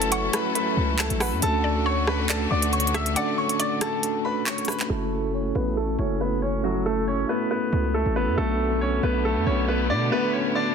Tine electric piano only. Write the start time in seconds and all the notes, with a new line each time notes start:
Already playing: F#4 A4 B4
0.00 A3 C#4 E4 F#4 A4
0.31 A3 C#4 E4 F#4 A4
1.19 A3 C#4 E4 F#4 B4
1.40 A3 C#4 D4 F#4 A4
1.73 A3 C#4 D4 F#4 A4
2.17 A3 C#4 D4 F#4 B4
2.49 A3 D4 F#4
3.14 A3 C#4 D4 F#4 A4
3.47 A3 C#4 D4 F#4 A4
3.79 A3 D4 A4
4.66 A3 C#4 D4 F#4 A4
4.88 A3 C#4 E4 F#4 A4
5.21 A3 C#4 E4 F#4 A4
5.65 A3 C#4 E4 F#4 A4
5.96 A3 C#4 E4 F#4 A4
6.63 A3 C#4 E4 F#4 A4
6.95 A3 C#4 E4 F#4 A4
7.27 A3 C#4 E4 F#4 A4
8.14 A3 C#4 E4 F#4 A4
8.36 A3 B3 D4 F#4 A4
8.69 A3 B3 D4 F#4 A4
9.13 A3 B3 D4 F#4 A4
9.45 A3 B3 D4 F#4 A4
10.10 A3 B3 D4 F#4 B4
10.43 A3 B3 D4 F#4 B4